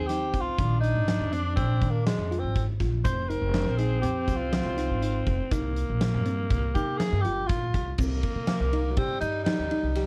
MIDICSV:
0, 0, Header, 1, 6, 480
1, 0, Start_track
1, 0, Key_signature, -3, "minor"
1, 0, Tempo, 493827
1, 567, Time_signature, 5, 2, 24, 8
1, 9782, End_track
2, 0, Start_track
2, 0, Title_t, "Tenor saxophone"
2, 0, Program_c, 0, 66
2, 66, Note_on_c, 0, 67, 92
2, 392, Note_on_c, 0, 65, 91
2, 406, Note_off_c, 0, 67, 0
2, 777, Note_off_c, 0, 65, 0
2, 783, Note_on_c, 0, 63, 95
2, 1285, Note_on_c, 0, 62, 79
2, 1299, Note_off_c, 0, 63, 0
2, 1508, Note_off_c, 0, 62, 0
2, 1514, Note_on_c, 0, 60, 86
2, 1844, Note_on_c, 0, 58, 76
2, 1858, Note_off_c, 0, 60, 0
2, 1994, Note_off_c, 0, 58, 0
2, 1999, Note_on_c, 0, 56, 76
2, 2322, Note_on_c, 0, 60, 70
2, 2337, Note_off_c, 0, 56, 0
2, 2563, Note_off_c, 0, 60, 0
2, 2956, Note_on_c, 0, 72, 101
2, 3193, Note_on_c, 0, 70, 103
2, 3208, Note_off_c, 0, 72, 0
2, 3672, Note_on_c, 0, 68, 88
2, 3687, Note_off_c, 0, 70, 0
2, 3900, Note_off_c, 0, 68, 0
2, 3906, Note_on_c, 0, 67, 85
2, 4234, Note_on_c, 0, 65, 81
2, 4249, Note_off_c, 0, 67, 0
2, 5438, Note_off_c, 0, 65, 0
2, 6556, Note_on_c, 0, 67, 93
2, 6777, Note_on_c, 0, 68, 102
2, 6792, Note_off_c, 0, 67, 0
2, 7007, Note_on_c, 0, 67, 97
2, 7021, Note_off_c, 0, 68, 0
2, 7254, Note_on_c, 0, 65, 85
2, 7268, Note_off_c, 0, 67, 0
2, 7748, Note_off_c, 0, 65, 0
2, 8238, Note_on_c, 0, 58, 81
2, 8716, Note_on_c, 0, 60, 90
2, 8731, Note_off_c, 0, 58, 0
2, 8941, Note_off_c, 0, 60, 0
2, 8947, Note_on_c, 0, 63, 99
2, 9170, Note_off_c, 0, 63, 0
2, 9176, Note_on_c, 0, 63, 88
2, 9782, Note_off_c, 0, 63, 0
2, 9782, End_track
3, 0, Start_track
3, 0, Title_t, "Synth arpeggio sound"
3, 0, Program_c, 1, 84
3, 96, Note_on_c, 1, 63, 82
3, 463, Note_off_c, 1, 63, 0
3, 569, Note_on_c, 1, 51, 95
3, 938, Note_off_c, 1, 51, 0
3, 1290, Note_on_c, 1, 60, 73
3, 1658, Note_off_c, 1, 60, 0
3, 1772, Note_on_c, 1, 51, 82
3, 2139, Note_off_c, 1, 51, 0
3, 2244, Note_on_c, 1, 65, 84
3, 2614, Note_off_c, 1, 65, 0
3, 2723, Note_on_c, 1, 65, 77
3, 2909, Note_off_c, 1, 65, 0
3, 3202, Note_on_c, 1, 63, 76
3, 3388, Note_off_c, 1, 63, 0
3, 3441, Note_on_c, 1, 62, 79
3, 3627, Note_off_c, 1, 62, 0
3, 3682, Note_on_c, 1, 63, 81
3, 3868, Note_off_c, 1, 63, 0
3, 3918, Note_on_c, 1, 60, 83
3, 4290, Note_off_c, 1, 60, 0
3, 4401, Note_on_c, 1, 65, 83
3, 4587, Note_off_c, 1, 65, 0
3, 4638, Note_on_c, 1, 63, 84
3, 4825, Note_off_c, 1, 63, 0
3, 4877, Note_on_c, 1, 63, 79
3, 5249, Note_off_c, 1, 63, 0
3, 5360, Note_on_c, 1, 63, 96
3, 5731, Note_off_c, 1, 63, 0
3, 6084, Note_on_c, 1, 60, 78
3, 6454, Note_off_c, 1, 60, 0
3, 6564, Note_on_c, 1, 63, 78
3, 6934, Note_off_c, 1, 63, 0
3, 7046, Note_on_c, 1, 65, 88
3, 7415, Note_off_c, 1, 65, 0
3, 7528, Note_on_c, 1, 65, 79
3, 7711, Note_off_c, 1, 65, 0
3, 7772, Note_on_c, 1, 60, 96
3, 8139, Note_off_c, 1, 60, 0
3, 8485, Note_on_c, 1, 63, 82
3, 8669, Note_off_c, 1, 63, 0
3, 8730, Note_on_c, 1, 67, 87
3, 9098, Note_off_c, 1, 67, 0
3, 9204, Note_on_c, 1, 63, 88
3, 9389, Note_off_c, 1, 63, 0
3, 9443, Note_on_c, 1, 63, 87
3, 9629, Note_off_c, 1, 63, 0
3, 9686, Note_on_c, 1, 67, 81
3, 9782, Note_off_c, 1, 67, 0
3, 9782, End_track
4, 0, Start_track
4, 0, Title_t, "Alto saxophone"
4, 0, Program_c, 2, 65
4, 0, Note_on_c, 2, 60, 86
4, 563, Note_off_c, 2, 60, 0
4, 569, Note_on_c, 2, 62, 110
4, 2665, Note_off_c, 2, 62, 0
4, 2954, Note_on_c, 2, 60, 118
4, 5362, Note_on_c, 2, 58, 107
4, 5376, Note_off_c, 2, 60, 0
4, 7522, Note_off_c, 2, 58, 0
4, 7768, Note_on_c, 2, 58, 91
4, 8661, Note_on_c, 2, 54, 61
4, 8675, Note_off_c, 2, 58, 0
4, 8716, Note_on_c, 2, 55, 85
4, 8730, Note_off_c, 2, 54, 0
4, 9667, Note_off_c, 2, 55, 0
4, 9672, Note_on_c, 2, 55, 81
4, 9782, Note_off_c, 2, 55, 0
4, 9782, End_track
5, 0, Start_track
5, 0, Title_t, "Upright bass"
5, 0, Program_c, 3, 32
5, 0, Note_on_c, 3, 39, 74
5, 298, Note_off_c, 3, 39, 0
5, 330, Note_on_c, 3, 36, 79
5, 438, Note_off_c, 3, 36, 0
5, 571, Note_on_c, 3, 34, 100
5, 898, Note_off_c, 3, 34, 0
5, 927, Note_on_c, 3, 32, 82
5, 1164, Note_on_c, 3, 41, 89
5, 1179, Note_off_c, 3, 32, 0
5, 1494, Note_off_c, 3, 41, 0
5, 1529, Note_on_c, 3, 34, 96
5, 1747, Note_off_c, 3, 34, 0
5, 1765, Note_on_c, 3, 46, 81
5, 1985, Note_off_c, 3, 46, 0
5, 2121, Note_on_c, 3, 41, 86
5, 2342, Note_off_c, 3, 41, 0
5, 2359, Note_on_c, 3, 32, 79
5, 2691, Note_off_c, 3, 32, 0
5, 2726, Note_on_c, 3, 34, 88
5, 2944, Note_off_c, 3, 34, 0
5, 2962, Note_on_c, 3, 29, 106
5, 3292, Note_off_c, 3, 29, 0
5, 3317, Note_on_c, 3, 29, 85
5, 3540, Note_off_c, 3, 29, 0
5, 3560, Note_on_c, 3, 34, 93
5, 3891, Note_off_c, 3, 34, 0
5, 3922, Note_on_c, 3, 41, 89
5, 4142, Note_off_c, 3, 41, 0
5, 4158, Note_on_c, 3, 36, 94
5, 4490, Note_off_c, 3, 36, 0
5, 4523, Note_on_c, 3, 36, 90
5, 4742, Note_off_c, 3, 36, 0
5, 4758, Note_on_c, 3, 32, 75
5, 5090, Note_off_c, 3, 32, 0
5, 5121, Note_on_c, 3, 29, 92
5, 5232, Note_off_c, 3, 29, 0
5, 5358, Note_on_c, 3, 36, 105
5, 5690, Note_off_c, 3, 36, 0
5, 5731, Note_on_c, 3, 34, 80
5, 5968, Note_on_c, 3, 43, 90
5, 5983, Note_off_c, 3, 34, 0
5, 6295, Note_off_c, 3, 43, 0
5, 6321, Note_on_c, 3, 36, 92
5, 6542, Note_off_c, 3, 36, 0
5, 6564, Note_on_c, 3, 48, 85
5, 6783, Note_off_c, 3, 48, 0
5, 6926, Note_on_c, 3, 43, 89
5, 7034, Note_off_c, 3, 43, 0
5, 7049, Note_on_c, 3, 31, 76
5, 7262, Note_off_c, 3, 31, 0
5, 7284, Note_on_c, 3, 34, 77
5, 7499, Note_off_c, 3, 34, 0
5, 7526, Note_on_c, 3, 36, 93
5, 7740, Note_off_c, 3, 36, 0
5, 7763, Note_on_c, 3, 36, 106
5, 7983, Note_off_c, 3, 36, 0
5, 8120, Note_on_c, 3, 48, 77
5, 8341, Note_off_c, 3, 48, 0
5, 8360, Note_on_c, 3, 36, 88
5, 8691, Note_off_c, 3, 36, 0
5, 8720, Note_on_c, 3, 48, 98
5, 8832, Note_off_c, 3, 48, 0
5, 8957, Note_on_c, 3, 43, 90
5, 9180, Note_off_c, 3, 43, 0
5, 9323, Note_on_c, 3, 39, 89
5, 9433, Note_off_c, 3, 39, 0
5, 9557, Note_on_c, 3, 36, 73
5, 9782, Note_off_c, 3, 36, 0
5, 9782, End_track
6, 0, Start_track
6, 0, Title_t, "Drums"
6, 85, Note_on_c, 9, 38, 34
6, 85, Note_on_c, 9, 42, 76
6, 183, Note_off_c, 9, 38, 0
6, 183, Note_off_c, 9, 42, 0
6, 325, Note_on_c, 9, 42, 63
6, 326, Note_on_c, 9, 36, 73
6, 422, Note_off_c, 9, 42, 0
6, 423, Note_off_c, 9, 36, 0
6, 566, Note_on_c, 9, 42, 84
6, 567, Note_on_c, 9, 36, 98
6, 663, Note_off_c, 9, 42, 0
6, 664, Note_off_c, 9, 36, 0
6, 809, Note_on_c, 9, 42, 60
6, 906, Note_off_c, 9, 42, 0
6, 1048, Note_on_c, 9, 38, 105
6, 1048, Note_on_c, 9, 42, 82
6, 1145, Note_off_c, 9, 38, 0
6, 1145, Note_off_c, 9, 42, 0
6, 1287, Note_on_c, 9, 42, 61
6, 1384, Note_off_c, 9, 42, 0
6, 1526, Note_on_c, 9, 36, 105
6, 1529, Note_on_c, 9, 42, 72
6, 1623, Note_off_c, 9, 36, 0
6, 1626, Note_off_c, 9, 42, 0
6, 1765, Note_on_c, 9, 36, 69
6, 1765, Note_on_c, 9, 42, 57
6, 1862, Note_off_c, 9, 36, 0
6, 1862, Note_off_c, 9, 42, 0
6, 2007, Note_on_c, 9, 38, 110
6, 2007, Note_on_c, 9, 42, 82
6, 2104, Note_off_c, 9, 38, 0
6, 2104, Note_off_c, 9, 42, 0
6, 2253, Note_on_c, 9, 42, 58
6, 2350, Note_off_c, 9, 42, 0
6, 2485, Note_on_c, 9, 36, 101
6, 2490, Note_on_c, 9, 42, 74
6, 2582, Note_off_c, 9, 36, 0
6, 2587, Note_off_c, 9, 42, 0
6, 2723, Note_on_c, 9, 36, 72
6, 2727, Note_on_c, 9, 38, 32
6, 2727, Note_on_c, 9, 42, 52
6, 2821, Note_off_c, 9, 36, 0
6, 2824, Note_off_c, 9, 38, 0
6, 2824, Note_off_c, 9, 42, 0
6, 2963, Note_on_c, 9, 36, 110
6, 2964, Note_on_c, 9, 82, 57
6, 2965, Note_on_c, 9, 42, 82
6, 3060, Note_off_c, 9, 36, 0
6, 3061, Note_off_c, 9, 82, 0
6, 3062, Note_off_c, 9, 42, 0
6, 3208, Note_on_c, 9, 42, 59
6, 3305, Note_off_c, 9, 42, 0
6, 3440, Note_on_c, 9, 38, 107
6, 3440, Note_on_c, 9, 42, 74
6, 3538, Note_off_c, 9, 38, 0
6, 3538, Note_off_c, 9, 42, 0
6, 3680, Note_on_c, 9, 42, 58
6, 3777, Note_off_c, 9, 42, 0
6, 3918, Note_on_c, 9, 42, 81
6, 4015, Note_off_c, 9, 42, 0
6, 4159, Note_on_c, 9, 36, 69
6, 4160, Note_on_c, 9, 38, 34
6, 4160, Note_on_c, 9, 42, 60
6, 4166, Note_on_c, 9, 82, 44
6, 4256, Note_off_c, 9, 36, 0
6, 4258, Note_off_c, 9, 38, 0
6, 4258, Note_off_c, 9, 42, 0
6, 4263, Note_off_c, 9, 82, 0
6, 4400, Note_on_c, 9, 38, 117
6, 4400, Note_on_c, 9, 42, 84
6, 4498, Note_off_c, 9, 38, 0
6, 4498, Note_off_c, 9, 42, 0
6, 4642, Note_on_c, 9, 38, 33
6, 4642, Note_on_c, 9, 42, 60
6, 4739, Note_off_c, 9, 38, 0
6, 4739, Note_off_c, 9, 42, 0
6, 4882, Note_on_c, 9, 42, 82
6, 4979, Note_off_c, 9, 42, 0
6, 5117, Note_on_c, 9, 42, 59
6, 5119, Note_on_c, 9, 36, 74
6, 5214, Note_off_c, 9, 42, 0
6, 5217, Note_off_c, 9, 36, 0
6, 5358, Note_on_c, 9, 42, 87
6, 5360, Note_on_c, 9, 36, 105
6, 5371, Note_on_c, 9, 82, 57
6, 5455, Note_off_c, 9, 42, 0
6, 5457, Note_off_c, 9, 36, 0
6, 5468, Note_off_c, 9, 82, 0
6, 5600, Note_on_c, 9, 42, 66
6, 5612, Note_on_c, 9, 82, 15
6, 5697, Note_off_c, 9, 42, 0
6, 5710, Note_off_c, 9, 82, 0
6, 5841, Note_on_c, 9, 38, 118
6, 5841, Note_on_c, 9, 42, 88
6, 5858, Note_on_c, 9, 82, 18
6, 5938, Note_off_c, 9, 38, 0
6, 5938, Note_off_c, 9, 42, 0
6, 5955, Note_off_c, 9, 82, 0
6, 6079, Note_on_c, 9, 42, 56
6, 6099, Note_on_c, 9, 82, 18
6, 6176, Note_off_c, 9, 42, 0
6, 6196, Note_off_c, 9, 82, 0
6, 6319, Note_on_c, 9, 42, 81
6, 6322, Note_on_c, 9, 36, 104
6, 6337, Note_on_c, 9, 82, 17
6, 6416, Note_off_c, 9, 42, 0
6, 6420, Note_off_c, 9, 36, 0
6, 6434, Note_off_c, 9, 82, 0
6, 6561, Note_on_c, 9, 42, 59
6, 6563, Note_on_c, 9, 36, 67
6, 6576, Note_on_c, 9, 82, 41
6, 6658, Note_off_c, 9, 42, 0
6, 6661, Note_off_c, 9, 36, 0
6, 6673, Note_off_c, 9, 82, 0
6, 6804, Note_on_c, 9, 38, 111
6, 6804, Note_on_c, 9, 42, 81
6, 6901, Note_off_c, 9, 38, 0
6, 6901, Note_off_c, 9, 42, 0
6, 7042, Note_on_c, 9, 42, 58
6, 7139, Note_off_c, 9, 42, 0
6, 7278, Note_on_c, 9, 42, 74
6, 7283, Note_on_c, 9, 36, 105
6, 7375, Note_off_c, 9, 42, 0
6, 7380, Note_off_c, 9, 36, 0
6, 7523, Note_on_c, 9, 42, 63
6, 7524, Note_on_c, 9, 36, 79
6, 7620, Note_off_c, 9, 42, 0
6, 7621, Note_off_c, 9, 36, 0
6, 7758, Note_on_c, 9, 49, 99
6, 7763, Note_on_c, 9, 36, 105
6, 7780, Note_on_c, 9, 82, 60
6, 7855, Note_off_c, 9, 49, 0
6, 7860, Note_off_c, 9, 36, 0
6, 7877, Note_off_c, 9, 82, 0
6, 8002, Note_on_c, 9, 51, 67
6, 8003, Note_on_c, 9, 36, 70
6, 8099, Note_off_c, 9, 51, 0
6, 8100, Note_off_c, 9, 36, 0
6, 8235, Note_on_c, 9, 38, 102
6, 8235, Note_on_c, 9, 51, 86
6, 8332, Note_off_c, 9, 38, 0
6, 8332, Note_off_c, 9, 51, 0
6, 8483, Note_on_c, 9, 51, 65
6, 8580, Note_off_c, 9, 51, 0
6, 8715, Note_on_c, 9, 51, 79
6, 8720, Note_on_c, 9, 36, 98
6, 8812, Note_off_c, 9, 51, 0
6, 8817, Note_off_c, 9, 36, 0
6, 8956, Note_on_c, 9, 51, 65
6, 8964, Note_on_c, 9, 82, 46
6, 9054, Note_off_c, 9, 51, 0
6, 9061, Note_off_c, 9, 82, 0
6, 9200, Note_on_c, 9, 38, 106
6, 9200, Note_on_c, 9, 51, 83
6, 9297, Note_off_c, 9, 38, 0
6, 9297, Note_off_c, 9, 51, 0
6, 9438, Note_on_c, 9, 51, 56
6, 9535, Note_off_c, 9, 51, 0
6, 9675, Note_on_c, 9, 38, 31
6, 9675, Note_on_c, 9, 51, 80
6, 9772, Note_off_c, 9, 38, 0
6, 9772, Note_off_c, 9, 51, 0
6, 9782, End_track
0, 0, End_of_file